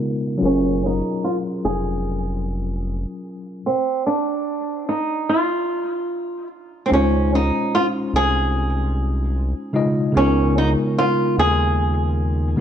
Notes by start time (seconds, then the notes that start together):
Already playing: C#3 G#3 B3 D#4 F4 A#4
0.38 F#3 C#4 F4
0.42 F#1 C#4 G#4 A#4
0.86 D#4
1.24 F4
1.65 F1 G#4
3.66 C4
4.07 D4
4.89 D#4
5.29 F4
6.86 C4 C#4
6.90 C#2 G#3 C#4 D#4 F4
6.95 C5
7.35 D#4
7.75 F4
8.13 C2 G#4
9.73 C#3 G#3 D#4 F4 D#5
10.13 C#2 C#3 G#3 B3 D#4
10.17 C#4 F4 A#4
10.58 D#4
10.98 F4
11.38 D#2 G#4
12.56 C#3 G#3 B3